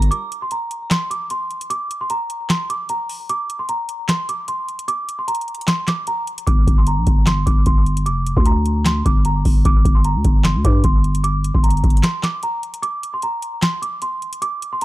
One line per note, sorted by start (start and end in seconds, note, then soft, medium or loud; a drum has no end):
0.00 0.11 G1 loud
0.00 0.11 A#5 medium
0.00 closed hi-hat medium
0.11 0.40 D6 loud
0.11 closed hi-hat medium
0.32 closed hi-hat medium
0.42 0.50 C6 medium
0.51 0.89 A#5 medium
0.51 closed hi-hat medium
0.71 closed hi-hat medium
0.91 1.07 C6 medium
0.91 snare loud
0.91 clap medium
0.91 closed hi-hat medium
1.10 1.27 D6 medium
1.10 closed hi-hat medium
1.30 1.68 C6 medium
1.30 closed hi-hat medium
1.51 closed hi-hat soft
1.61 closed hi-hat medium
1.70 1.99 D6 loud
1.70 closed hi-hat medium
1.91 closed hi-hat medium
2.01 2.09 C6 medium
2.10 2.48 A#5 medium
2.10 closed hi-hat medium
2.30 closed hi-hat medium
2.50 2.66 C6 medium
2.50 snare loud
2.50 clap medium
2.50 closed hi-hat medium
2.70 2.86 D6 medium
2.70 closed hi-hat medium
2.89 3.06 A#5 medium
2.89 closed hi-hat medium
3.09 open hi-hat medium
3.29 3.58 D6 loud
3.29 closed hi-hat medium
3.50 closed hi-hat medium
3.59 3.67 C6 medium
3.69 4.07 A#5 medium
3.69 closed hi-hat medium
3.89 closed hi-hat medium
4.09 4.25 C6 medium
4.09 snare loud
4.09 clap medium
4.09 closed hi-hat medium
4.29 4.45 D6 medium
4.29 closed hi-hat medium
4.48 4.86 C6 medium
4.48 closed hi-hat medium
4.68 closed hi-hat soft
4.79 closed hi-hat medium
4.88 5.17 D6 loud
4.88 closed hi-hat medium
5.09 closed hi-hat medium
5.19 5.26 C6 medium
5.28 5.65 A#5 medium
5.28 closed hi-hat medium
5.35 closed hi-hat medium
5.41 closed hi-hat soft
5.48 closed hi-hat soft
5.55 closed hi-hat medium
5.61 closed hi-hat medium
5.68 5.84 C6 medium
5.68 snare loud
5.68 clap medium
5.68 closed hi-hat medium
5.88 6.04 D6 medium
5.88 snare medium
5.88 clap medium
5.88 closed hi-hat medium
6.07 6.24 A#5 medium
6.07 closed hi-hat medium
6.27 closed hi-hat soft
6.27 open hi-hat medium
6.38 closed hi-hat medium
6.47 6.66 G1 loud
6.47 6.75 D6 loud
6.47 kick loud
6.47 closed hi-hat medium
6.67 6.99 G1 loud
6.67 kick loud
6.67 closed hi-hat medium
6.78 6.85 C6 medium
6.87 7.25 A#5 medium
6.87 closed hi-hat medium
6.98 7.06 A#1 loud
7.07 7.45 G1 loud
7.07 kick medium
7.07 closed hi-hat medium
7.26 7.43 C6 medium
7.26 snare loud
7.26 clap medium
7.26 closed hi-hat medium
7.46 7.66 G1 loud
7.46 7.63 D6 medium
7.46 kick medium
7.46 closed hi-hat medium
7.66 8.08 G1 loud
7.66 8.04 C6 medium
7.66 kick loud
7.66 closed hi-hat medium
7.86 closed hi-hat soft
7.97 closed hi-hat medium
8.06 8.35 F1 loud
8.06 8.35 D6 loud
8.06 closed hi-hat medium
8.27 closed hi-hat medium
8.37 9.03 D2 loud
8.37 8.44 C6 medium
8.37 kick medium
8.46 8.83 A#5 medium
8.46 closed hi-hat medium
8.66 closed hi-hat medium
8.85 9.02 C6 medium
8.85 snare loud
8.85 clap medium
8.85 closed hi-hat medium
9.06 9.44 G1 loud
9.06 9.22 D6 medium
9.06 kick medium
9.06 closed hi-hat medium
9.25 9.42 A#5 medium
9.25 closed hi-hat medium
9.45 9.64 G1 loud
9.45 kick medium
9.45 open hi-hat medium
9.65 9.84 G1 loud
9.65 9.94 D6 loud
9.65 kick loud
9.65 closed hi-hat medium
9.85 10.17 G1 loud
9.85 kick loud
9.85 closed hi-hat medium
9.95 10.03 C6 medium
10.04 10.42 A#5 medium
10.04 closed hi-hat medium
10.15 10.24 D2 medium
10.24 10.57 G1 loud
10.24 kick medium
10.24 closed hi-hat medium
10.44 10.61 C6 medium
10.44 snare loud
10.44 clap medium
10.44 closed hi-hat medium
10.55 10.64 D2 loud
10.65 10.84 G2 loud
10.65 10.81 D6 medium
10.65 kick medium
10.65 closed hi-hat medium
10.84 11.52 G1 loud
10.84 11.22 C6 medium
10.84 kick medium
10.84 closed hi-hat medium
11.04 closed hi-hat soft
11.15 closed hi-hat medium
11.24 11.52 D6 loud
11.24 closed hi-hat medium
11.44 closed hi-hat medium
11.55 11.83 G1 loud
11.55 11.62 C6 medium
11.55 kick medium
11.64 12.01 A#5 medium
11.64 closed hi-hat medium
11.70 closed hi-hat medium
11.77 closed hi-hat soft
11.84 12.03 G1 loud
11.84 kick loud
11.84 closed hi-hat soft
11.90 closed hi-hat medium
11.97 closed hi-hat medium
12.03 12.20 C6 medium
12.03 snare loud
12.03 clap medium
12.03 closed hi-hat medium
12.23 12.40 D6 medium
12.23 snare medium
12.23 clap medium
12.23 closed hi-hat medium
12.43 12.60 A#5 medium
12.43 closed hi-hat medium
12.63 closed hi-hat soft
12.63 open hi-hat medium
12.74 closed hi-hat medium
12.82 13.11 D6 loud
12.82 closed hi-hat medium
13.03 closed hi-hat medium
13.14 13.21 C6 medium
13.22 13.60 A#5 medium
13.22 closed hi-hat medium
13.42 closed hi-hat medium
13.62 13.79 C6 medium
13.62 snare loud
13.62 clap medium
13.62 closed hi-hat medium
13.82 13.98 D6 medium
13.82 closed hi-hat medium
14.02 14.40 C6 medium
14.02 closed hi-hat medium
14.22 closed hi-hat soft
14.33 closed hi-hat medium
14.42 14.70 D6 loud
14.42 closed hi-hat medium
14.62 closed hi-hat medium
14.73 14.80 C6 medium
14.81 closed hi-hat medium